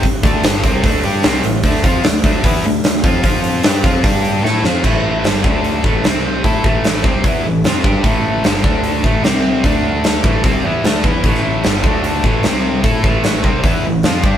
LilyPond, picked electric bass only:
\new Staff \with { instrumentName = "Picked electric bass" } { \clef bass \time 4/4 \key a \minor \tempo 4 = 150 r8 d,8 g,,8 c,8 d,8 g,8 c,8 a,,8 | d,8 f,8 d,8 d,8 e,8 d,8 d,8 f,8 | f,4 g,8 f,8 g,4 a,8 f,8 | a,,4 g,,8 d,4 a,,8 c,4 |
a,8 a,,4 c,8 e,8 a,,8 f,8 g,8 | a,,4 g,,8 d,4 a,,8 c,4 | d,4. a,,8 c,8 e,8 d,8 e,8 | a,,4 g,,8 d,4 a,,8 c,4 |
a,8 a,,4 c,8 e,8 a,,8 f,8 g,8 | }